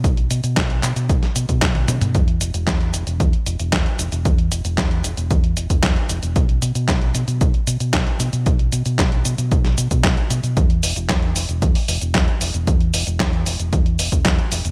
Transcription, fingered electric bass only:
\new Staff \with { instrumentName = "Fingered electric bass" } { \clef bass \time 4/4 \key b \phrygian \tempo 4 = 114 b,,8 b,16 b,16 b,,8 b,16 b,16 b,,16 r16 b,16 b,16 b,,8 b,16 b,16 | e,8 e,,16 e,,16 e,8 e,,16 e,,16 e,16 r16 e,,16 e,,16 e,16 r16 e,,16 e,,16 | e,8 e,,16 e,,16 e,8 e,,16 e,,16 e,8 e,,16 e,,16 e,16 r16 e,,16 e,,16 | b,,8 b,16 b,16 b,,8 b,16 b,16 b,,16 r16 b,16 b,16 b,,16 r16 b,16 b,16 |
b,,8 b,16 b,16 b,,8 b,16 b,16 b,,8 b,16 b,16 b,,16 r16 b,16 b,16 | e,8 e,,16 e,,16 e,8 e,,16 e,,16 e,16 r16 e,,16 e,,16 e,16 r16 e,,16 e,,16 | e,8 e,,16 e,,16 e,8 e,,16 e,,16 e,8 e,,16 e,,16 e,16 r16 e,,16 e,,16 | }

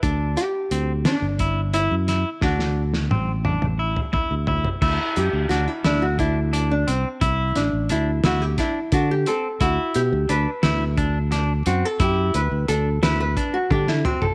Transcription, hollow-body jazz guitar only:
\new Staff \with { instrumentName = "Hollow-body jazz guitar" } { \time 7/8 \key d \mixolydian \tempo 4 = 88 r8 g'4 d'4 e'4 | fis'2~ fis'8 r4 | r8 g'8 fis'16 e'16 d'16 fis'16 e'8. d'16 c'8~ | c'8 d'8 e'8 fis'16 g'16 e'8 fis'16 g'16 a'8 |
fis'8 g'8 b'4 r4 fis'16 a'16 | g'8 b'8 a'8 b'16 b'8 fis'16 g'16 e'16 fis'16 a'16 | }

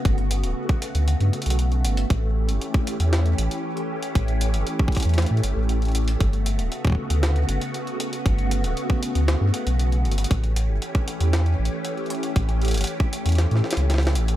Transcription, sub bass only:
\new Staff \with { instrumentName = "Sub bass" } { \clef bass \time 4/4 \key a \mixolydian \tempo 4 = 117 g,,8. d,,16 r8. d,8 g,16 r16 b,,8. g,,8 | a,,8. g,,16 r8. e,8. a,,16 r4 r16 | a,,8. g,,16 r8. e,8 a,16 g,,16 a,,4~ a,,16 | g,,8. d,,16 r8. d,8. g,,16 r4 r16 |
g,,8. d,,16 r8. d,8 g,16 r16 b,,8. g,,8 | a,,8. g,,16 r8. e,8. a,,16 r4 r16 | a,,8. g,,16 r8. e,8 a,16 r16 cis,8. a,,8 | }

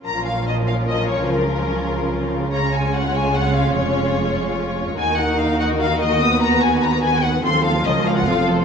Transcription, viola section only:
\new Staff \with { instrumentName = "Viola section" } { \time 3/4 \key bes \minor \tempo 4 = 146 << { des'2.~ | des'2. | des'2.~ | des'2. |
ees'2. | b2. | c'4 des'4 c'4 | } \\ { f2.~ | f2. | aes2.~ | aes2. |
ees2.~ | ees2. | f2. | } >> }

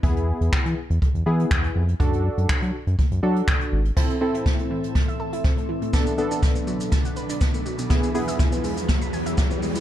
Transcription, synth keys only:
\new Staff \with { instrumentName = "Synth keys" } { \time 4/4 \key a \dorian \tempo 4 = 122 <b e' gis'>4. r4 <b e' gis'>4 r8 | <d' fis' a'>4. r4 <d' fis' a'>4 r8 | <c' e' a'>8 <c' e' a'>4. r2 | <b d' a'>8 <b d' a'>4. r2 |
<b e' gis'>8 <b e' gis'>4. r2 | }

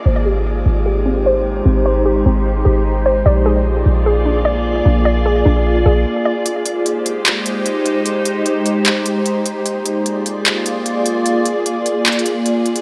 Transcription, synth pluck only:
\new Staff \with { instrumentName = "Synth pluck" } { \time 4/4 \key aes \lydian \tempo 4 = 150 c''8 g'4. g'8 c'8 c''4 | c'8 c''8 g'8 c'4 g'4 c''8 | d''8 aes'4. aes'8 d'8 d''4 | d'8 d''8 aes'8 d'4 aes'4 d''8 |
r1 | r1 | r1 | r1 | }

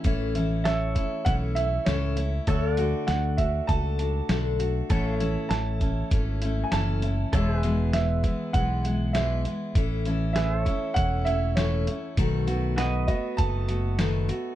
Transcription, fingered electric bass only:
\new Staff \with { instrumentName = "Fingered electric bass" } { \clef bass \time 4/4 \key a \major \tempo 4 = 99 a,,2 b,,4 cis,4 | d,4 d,4 cis,4 b,,4 | a,,4 a,,4 gis,,4 fis,,4 | e,,2 b,,2 |
a,,2 e,,2 | b,,2 fis,,2 | }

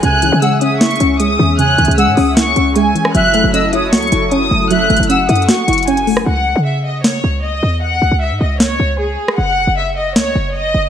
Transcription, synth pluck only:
\new Staff \with { instrumentName = "Synth pluck" } { \time 4/4 \key fis \dorian \tempo 4 = 154 cis8 e8 gis8 cis'8 e'8 cis'8 gis8 e8 | cis8 e8 gis8 cis'8 e'8 cis'8 gis8 e8 | fis8 a8 cis'8 e'8 fis'8 e'8 cis'8 a8 | fis8 a8 cis'8 e'8 fis'8 e'8 cis'8 a8 |
r1 | r1 | r1 | }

